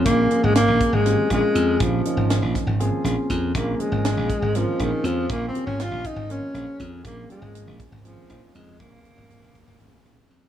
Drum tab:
HH |xxxxxxx|xxxxxxx|xxxxxxx|xxxxxxx|
SD |--o-o--|--oo-oo|--o-o--|--o----|
BD |o--o-o-|o--o--o|o--o-o-|o--o--o|

HH |xxxxxxx|xxxxxxx|
SD |-------|-------|
BD |o--o-o-|o--o--o|